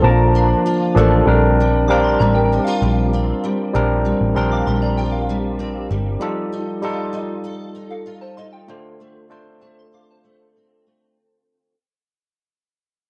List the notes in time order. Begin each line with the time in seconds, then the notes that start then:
Already playing: D3 A3 C4 F4 A4
0.02 A#1 F3 A#3 C4 A#4 A5
0.10 D4
0.35 D4
0.66 F4
0.95 A1 F3 A3 A#3 D4 A4
1.25 A#1 G3 C4 D4 A#4
1.60 G3
1.88 G3 C4 D4 A#4 F5 D6
2.04 C6
2.19 A1 G3 D5 A#5
2.35 A#4 G5
2.52 D#4
2.64 F4 F5
2.82 A#1 G3
3.13 C4
3.44 G3
3.73 A#1 A#2 G3 C4 D4 A#4
4.05 G3
4.21 A1
4.35 A#1 G3 C4 D4 A#4 C6
4.52 F5 D6
4.67 A#1 G3 C6
4.82 D5 A#5
4.97 F4 A#4 G5
5.12 F5
5.29 G3
5.59 C4
5.91 G1 G3
6.20 F3 G3 D#4 F4 A4
6.53 D#4
6.82 G3 D#4 F4 A4
7.13 D#4
7.44 A4
7.75 D#4
7.91 A4 F5
8.06 F4
8.21 C5 A5
8.37 D#4 D#5 C6
8.53 G5
8.68 D3 A3 D4 F4 C5
9.00 A3
9.29 A3 C4 D4 F4 C5
9.61 A3 C5 A5
9.79 C6
9.93 F4 F5 D6
10.11 C5 A5
10.24 A3
10.56 C4
10.87 A3